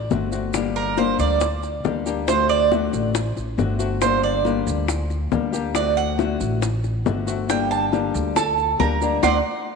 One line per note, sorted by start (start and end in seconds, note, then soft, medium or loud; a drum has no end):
0.11 1.13 G1 medium
0.11 0.32 D3 soft
0.11 0.32 A3 medium
0.11 0.32 C4 medium
0.11 0.31 F#4 medium
0.11 high bongo soft
0.11 low bongo medium
0.11 maracas soft
0.32 0.54 A3 soft
0.32 0.54 C4 medium
0.32 0.53 F#4 medium
0.32 high bongo soft
0.32 maracas medium
0.54 0.96 D3 medium
0.54 0.97 G3 medium
0.54 0.97 A#3 medium
0.54 0.98 D4 medium
0.54 0.97 G4 medium
0.54 high bongo medium
0.54 maracas medium
0.76 0.97 A#4 medium
0.76 maracas soft
0.97 1.40 D3 medium
0.97 1.40 G3 medium
0.97 1.40 A#3 medium
0.97 1.40 D4 medium
0.97 1.41 G4 medium
0.97 1.19 C5 medium
0.97 high bongo soft
0.97 maracas soft
1.19 1.80 D2 medium
1.19 1.60 D5 medium
1.19 high bongo soft
1.19 maracas medium
1.41 muted nylon-string guitar stroke medium
1.41 high bongo medium
1.41 maracas medium
1.63 high bongo soft
1.63 maracas soft
1.84 2.87 D2 medium
1.84 2.05 G3 soft
1.84 2.06 A#3 soft
1.84 2.05 D4 medium
1.84 2.05 G4 medium
1.84 high bongo soft
1.84 low bongo medium
1.84 maracas soft
2.06 2.27 G3 soft
2.06 2.28 A#3 medium
2.06 2.27 D4 medium
2.06 2.27 G4 medium
2.06 high bongo soft
2.06 maracas medium
2.28 2.70 D3 medium
2.28 2.71 A3 medium
2.28 2.71 C4 medium
2.28 2.71 F#4 medium
2.28 2.49 C5 medium
2.28 high bongo medium
2.28 maracas medium
2.49 2.71 D5 medium
2.49 maracas soft
2.71 3.13 D3 medium
2.71 3.14 A3 medium
2.71 3.14 C4 medium
2.71 3.14 F#4 medium
2.71 high bongo medium
2.71 maracas soft
2.93 3.34 A1 medium
2.93 high bongo soft
2.93 maracas medium
3.14 muted nylon-string guitar stroke medium
3.14 high bongo medium
3.14 maracas medium
3.36 3.57 A1 medium
3.36 high bongo soft
3.36 maracas soft
3.57 4.61 G1 medium
3.57 3.79 D3 medium
3.57 3.79 A3 medium
3.57 3.79 C4 medium
3.57 3.78 F#4 medium
3.57 high bongo soft
3.57 low bongo medium
3.57 maracas soft
3.79 4.01 A3 soft
3.79 4.01 C4 medium
3.79 4.00 F#4 medium
3.79 high bongo soft
3.79 maracas medium
4.02 4.44 D3 medium
4.02 4.44 G3 medium
4.02 4.45 A#3 medium
4.02 4.45 D4 medium
4.02 4.45 G4 medium
4.02 4.23 C5 medium
4.02 high bongo medium
4.02 maracas medium
4.23 4.45 D5 medium
4.23 maracas soft
4.45 4.88 D3 medium
4.45 4.88 G3 medium
4.45 4.88 A#3 medium
4.45 4.88 D4 medium
4.45 4.88 G4 medium
4.45 high bongo soft
4.45 maracas soft
4.67 5.28 D2 loud
4.67 high bongo soft
4.67 maracas medium
4.88 muted nylon-string guitar stroke medium
4.88 high bongo medium
4.88 maracas medium
5.10 high bongo soft
5.10 maracas soft
5.32 6.34 D2 medium
5.32 5.53 G3 medium
5.32 5.53 A#3 medium
5.32 5.52 D4 medium
5.32 5.51 G4 medium
5.32 high bongo soft
5.32 low bongo medium
5.32 maracas soft
5.52 5.74 G3 medium
5.52 5.75 A#3 medium
5.52 5.74 D4 medium
5.52 5.74 G4 medium
5.52 high bongo soft
5.52 maracas medium
5.74 6.17 D3 medium
5.74 6.17 A3 medium
5.74 6.18 C4 medium
5.74 6.18 F#4 medium
5.74 5.96 D5 medium
5.74 high bongo medium
5.74 maracas medium
5.97 6.18 F#5 medium
5.97 maracas soft
6.18 6.60 D3 medium
6.18 6.61 A3 medium
6.18 6.61 C4 medium
6.18 6.61 F#4 medium
6.18 high bongo medium
6.18 maracas soft
6.40 7.02 A1 medium
6.40 high bongo soft
6.40 maracas medium
6.61 muted nylon-string guitar stroke medium
6.61 high bongo medium
6.61 maracas medium
6.84 high bongo soft
6.84 maracas soft
7.05 8.09 G1 medium
7.05 7.26 D3 medium
7.05 7.27 A3 medium
7.05 7.27 C4 medium
7.05 7.26 F#4 medium
7.05 high bongo soft
7.05 low bongo medium
7.05 maracas soft
7.27 7.49 A3 soft
7.27 7.49 C4 medium
7.27 7.48 F#4 medium
7.27 high bongo soft
7.27 maracas medium
7.49 7.90 D3 medium
7.49 7.91 G3 medium
7.49 7.92 A#3 medium
7.49 7.92 D4 medium
7.49 7.92 G4 medium
7.49 7.71 G5 medium
7.49 high bongo medium
7.49 maracas medium
7.71 7.84 A5 medium
7.71 maracas soft
7.92 8.35 D3 medium
7.92 8.35 G3 medium
7.92 8.35 A#3 medium
7.92 8.35 D4 medium
7.92 8.36 G4 medium
7.92 high bongo medium
7.92 maracas soft
8.14 8.76 D2 loud
8.14 high bongo soft
8.14 maracas medium
8.36 8.77 A4 medium
8.36 muted nylon-string guitar stroke medium
8.36 high bongo medium
8.36 maracas medium
8.58 high bongo soft
8.58 maracas soft
8.79 9.20 D2 medium
8.79 9.01 G3 medium
8.79 9.01 A#3 soft
8.79 9.01 D4 medium
8.79 9.01 G4 medium
8.79 9.20 A#4 medium
8.79 high bongo soft
8.79 low bongo medium
8.79 maracas soft
9.01 9.23 G3 medium
9.01 9.23 A#3 medium
9.01 9.23 D4 medium
9.01 9.22 G4 medium
9.01 high bongo soft
9.01 maracas medium
9.23 9.39 D2 medium
9.23 9.38 A3 medium
9.23 9.38 C4 medium
9.23 9.38 D4 medium
9.23 9.37 C5 medium
9.23 9.37 D5 medium
9.23 9.37 F#5 medium
9.23 high bongo medium
9.23 maracas loud